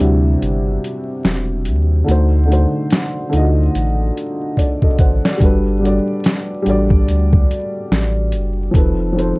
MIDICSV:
0, 0, Header, 1, 4, 480
1, 0, Start_track
1, 0, Tempo, 833333
1, 1196, Time_signature, 4, 2, 24, 8
1, 5410, End_track
2, 0, Start_track
2, 0, Title_t, "Upright piano"
2, 0, Program_c, 0, 0
2, 0, Control_c, 0, 64, 127
2, 0, Note_on_c, 0, 48, 81
2, 0, Note_on_c, 0, 55, 78
2, 0, Note_on_c, 0, 62, 78
2, 0, Note_on_c, 0, 64, 64
2, 0, Note_on_c, 0, 66, 82
2, 0, Note_on_c, 0, 71, 78
2, 4, Note_off_c, 0, 64, 0
2, 4, Note_on_c, 0, 64, 75
2, 16, Note_off_c, 0, 66, 0
2, 16, Note_on_c, 0, 66, 93
2, 706, Note_off_c, 0, 48, 0
2, 710, Note_off_c, 0, 55, 0
2, 715, Note_off_c, 0, 62, 0
2, 720, Note_off_c, 0, 64, 0
2, 726, Note_off_c, 0, 66, 0
2, 1176, Note_on_c, 0, 50, 76
2, 1186, Note_on_c, 0, 57, 75
2, 1194, Note_on_c, 0, 63, 73
2, 1205, Control_c, 0, 64, 0
2, 1206, Note_off_c, 0, 71, 0
2, 1206, Note_on_c, 0, 66, 74
2, 1216, Note_on_c, 0, 72, 85
2, 1300, Control_c, 0, 64, 127
2, 1378, Note_off_c, 0, 50, 0
2, 1383, Note_off_c, 0, 57, 0
2, 1387, Note_off_c, 0, 63, 0
2, 1393, Note_off_c, 0, 66, 0
2, 1398, Note_off_c, 0, 72, 0
2, 1414, Note_on_c, 0, 50, 79
2, 1426, Note_on_c, 0, 57, 69
2, 1434, Note_on_c, 0, 63, 67
2, 1447, Note_on_c, 0, 66, 69
2, 1457, Note_on_c, 0, 72, 81
2, 1809, Note_off_c, 0, 50, 0
2, 1815, Note_off_c, 0, 57, 0
2, 1819, Note_off_c, 0, 63, 0
2, 1825, Note_off_c, 0, 66, 0
2, 1830, Note_off_c, 0, 72, 0
2, 1898, Note_on_c, 0, 50, 83
2, 1908, Note_on_c, 0, 57, 78
2, 1917, Note_on_c, 0, 63, 75
2, 1928, Note_on_c, 0, 65, 63
2, 1938, Note_on_c, 0, 75, 90
2, 1964, Note_on_c, 0, 66, 77
2, 1967, Note_off_c, 0, 65, 0
2, 2627, Note_off_c, 0, 50, 0
2, 2632, Note_off_c, 0, 57, 0
2, 2636, Note_off_c, 0, 63, 0
2, 2638, Note_on_c, 0, 74, 65
2, 2641, Note_on_c, 0, 69, 58
2, 2647, Note_off_c, 0, 75, 0
2, 2660, Note_off_c, 0, 66, 0
2, 2774, Note_off_c, 0, 74, 0
2, 2776, Note_off_c, 0, 69, 0
2, 2783, Note_on_c, 0, 75, 70
2, 2786, Note_on_c, 0, 69, 62
2, 2873, Note_off_c, 0, 75, 0
2, 2874, Note_off_c, 0, 69, 0
2, 2880, Note_on_c, 0, 78, 66
2, 2883, Note_on_c, 0, 72, 62
2, 3015, Note_off_c, 0, 78, 0
2, 3017, Note_off_c, 0, 72, 0
2, 3022, Note_on_c, 0, 74, 60
2, 3026, Note_on_c, 0, 69, 50
2, 3095, Note_on_c, 0, 55, 74
2, 3106, Note_on_c, 0, 62, 71
2, 3116, Note_on_c, 0, 66, 76
2, 3119, Note_off_c, 0, 69, 0
2, 3124, Control_c, 0, 64, 0
2, 3128, Note_on_c, 0, 69, 78
2, 3137, Note_on_c, 0, 71, 91
2, 3234, Control_c, 0, 64, 127
2, 3249, Note_off_c, 0, 74, 0
2, 3298, Note_off_c, 0, 55, 0
2, 3303, Note_off_c, 0, 62, 0
2, 3308, Note_off_c, 0, 66, 0
2, 3314, Note_off_c, 0, 69, 0
2, 3319, Note_off_c, 0, 71, 0
2, 3336, Note_on_c, 0, 55, 70
2, 3346, Note_on_c, 0, 62, 70
2, 3358, Note_on_c, 0, 66, 74
2, 3368, Note_on_c, 0, 69, 64
2, 3378, Note_on_c, 0, 74, 81
2, 3730, Note_off_c, 0, 55, 0
2, 3735, Note_off_c, 0, 62, 0
2, 3741, Note_off_c, 0, 66, 0
2, 3746, Note_off_c, 0, 69, 0
2, 3751, Note_off_c, 0, 74, 0
2, 3815, Note_on_c, 0, 55, 87
2, 3828, Note_on_c, 0, 62, 76
2, 3837, Note_on_c, 0, 66, 79
2, 3847, Note_on_c, 0, 69, 68
2, 3857, Note_on_c, 0, 74, 93
2, 4546, Note_off_c, 0, 55, 0
2, 4552, Note_off_c, 0, 62, 0
2, 4556, Note_off_c, 0, 66, 0
2, 4562, Note_off_c, 0, 69, 0
2, 4566, Note_off_c, 0, 74, 0
2, 5017, Note_on_c, 0, 53, 75
2, 5027, Note_on_c, 0, 60, 69
2, 5037, Note_on_c, 0, 63, 63
2, 5043, Control_c, 0, 64, 0
2, 5047, Note_on_c, 0, 69, 74
2, 5058, Note_on_c, 0, 71, 76
2, 5135, Control_c, 0, 64, 127
2, 5219, Note_off_c, 0, 53, 0
2, 5224, Note_off_c, 0, 60, 0
2, 5229, Note_off_c, 0, 63, 0
2, 5234, Note_off_c, 0, 69, 0
2, 5239, Note_off_c, 0, 71, 0
2, 5255, Note_on_c, 0, 53, 71
2, 5265, Note_on_c, 0, 60, 67
2, 5275, Note_on_c, 0, 63, 60
2, 5286, Note_on_c, 0, 69, 75
2, 5295, Note_on_c, 0, 72, 78
2, 5410, Note_off_c, 0, 53, 0
2, 5410, Note_off_c, 0, 60, 0
2, 5410, Note_off_c, 0, 63, 0
2, 5410, Note_off_c, 0, 69, 0
2, 5410, Note_off_c, 0, 72, 0
2, 5410, End_track
3, 0, Start_track
3, 0, Title_t, "Sub bass"
3, 0, Program_c, 1, 38
3, 1, Note_on_c, 1, 38, 92
3, 209, Note_off_c, 1, 38, 0
3, 242, Note_on_c, 1, 31, 92
3, 449, Note_off_c, 1, 31, 0
3, 716, Note_on_c, 1, 28, 97
3, 961, Note_on_c, 1, 39, 84
3, 969, Note_off_c, 1, 28, 0
3, 1169, Note_off_c, 1, 39, 0
3, 1198, Note_on_c, 1, 38, 118
3, 1533, Note_off_c, 1, 38, 0
3, 1919, Note_on_c, 1, 38, 88
3, 2127, Note_off_c, 1, 38, 0
3, 2160, Note_on_c, 1, 33, 95
3, 2368, Note_off_c, 1, 33, 0
3, 2876, Note_on_c, 1, 33, 90
3, 3002, Note_off_c, 1, 33, 0
3, 3117, Note_on_c, 1, 31, 117
3, 3452, Note_off_c, 1, 31, 0
3, 3837, Note_on_c, 1, 33, 97
3, 4047, Note_off_c, 1, 33, 0
3, 4079, Note_on_c, 1, 38, 92
3, 4288, Note_off_c, 1, 38, 0
3, 4556, Note_on_c, 1, 33, 88
3, 4794, Note_on_c, 1, 30, 88
3, 4803, Note_off_c, 1, 33, 0
3, 5005, Note_off_c, 1, 30, 0
3, 5036, Note_on_c, 1, 29, 107
3, 5372, Note_off_c, 1, 29, 0
3, 5410, End_track
4, 0, Start_track
4, 0, Title_t, "Drums"
4, 0, Note_on_c, 9, 42, 66
4, 57, Note_off_c, 9, 42, 0
4, 243, Note_on_c, 9, 42, 66
4, 301, Note_off_c, 9, 42, 0
4, 486, Note_on_c, 9, 42, 60
4, 543, Note_off_c, 9, 42, 0
4, 719, Note_on_c, 9, 38, 89
4, 722, Note_on_c, 9, 42, 71
4, 777, Note_off_c, 9, 38, 0
4, 780, Note_off_c, 9, 42, 0
4, 952, Note_on_c, 9, 42, 67
4, 1009, Note_off_c, 9, 42, 0
4, 1200, Note_on_c, 9, 42, 77
4, 1258, Note_off_c, 9, 42, 0
4, 1451, Note_on_c, 9, 42, 55
4, 1508, Note_off_c, 9, 42, 0
4, 1673, Note_on_c, 9, 42, 66
4, 1685, Note_on_c, 9, 38, 107
4, 1730, Note_off_c, 9, 42, 0
4, 1743, Note_off_c, 9, 38, 0
4, 1917, Note_on_c, 9, 42, 71
4, 1975, Note_off_c, 9, 42, 0
4, 2160, Note_on_c, 9, 42, 76
4, 2218, Note_off_c, 9, 42, 0
4, 2404, Note_on_c, 9, 42, 59
4, 2461, Note_off_c, 9, 42, 0
4, 2634, Note_on_c, 9, 36, 43
4, 2644, Note_on_c, 9, 42, 80
4, 2691, Note_off_c, 9, 36, 0
4, 2701, Note_off_c, 9, 42, 0
4, 2777, Note_on_c, 9, 36, 63
4, 2835, Note_off_c, 9, 36, 0
4, 2872, Note_on_c, 9, 42, 70
4, 2873, Note_on_c, 9, 36, 76
4, 2929, Note_off_c, 9, 42, 0
4, 2931, Note_off_c, 9, 36, 0
4, 3024, Note_on_c, 9, 38, 84
4, 3082, Note_off_c, 9, 38, 0
4, 3113, Note_on_c, 9, 36, 89
4, 3117, Note_on_c, 9, 42, 73
4, 3171, Note_off_c, 9, 36, 0
4, 3174, Note_off_c, 9, 42, 0
4, 3371, Note_on_c, 9, 42, 50
4, 3428, Note_off_c, 9, 42, 0
4, 3594, Note_on_c, 9, 42, 69
4, 3606, Note_on_c, 9, 38, 117
4, 3652, Note_off_c, 9, 42, 0
4, 3664, Note_off_c, 9, 38, 0
4, 3837, Note_on_c, 9, 42, 62
4, 3894, Note_off_c, 9, 42, 0
4, 3976, Note_on_c, 9, 36, 85
4, 4034, Note_off_c, 9, 36, 0
4, 4080, Note_on_c, 9, 42, 75
4, 4137, Note_off_c, 9, 42, 0
4, 4220, Note_on_c, 9, 36, 112
4, 4278, Note_off_c, 9, 36, 0
4, 4325, Note_on_c, 9, 42, 53
4, 4382, Note_off_c, 9, 42, 0
4, 4561, Note_on_c, 9, 38, 89
4, 4565, Note_on_c, 9, 42, 71
4, 4619, Note_off_c, 9, 38, 0
4, 4622, Note_off_c, 9, 42, 0
4, 4793, Note_on_c, 9, 42, 69
4, 4851, Note_off_c, 9, 42, 0
4, 5034, Note_on_c, 9, 36, 92
4, 5039, Note_on_c, 9, 42, 81
4, 5092, Note_off_c, 9, 36, 0
4, 5096, Note_off_c, 9, 42, 0
4, 5291, Note_on_c, 9, 42, 54
4, 5348, Note_off_c, 9, 42, 0
4, 5410, End_track
0, 0, End_of_file